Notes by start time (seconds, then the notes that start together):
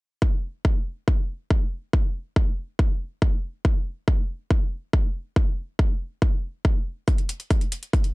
0.22 kick
0.65 kick
1.08 kick
1.51 kick
1.93 kick
2.36 kick
2.79 kick
3.22 kick
3.65 kick
4.08 kick
4.51 kick
4.93 kick
5.36 kick
5.79 kick
6.22 kick
6.65 kick
7.08 kick, closed hi-hat
7.18 closed hi-hat
7.29 closed hi-hat
7.40 closed hi-hat
7.51 kick, closed hi-hat
7.61 closed hi-hat
7.72 closed hi-hat
7.83 closed hi-hat
7.93 kick, closed hi-hat
8.04 closed hi-hat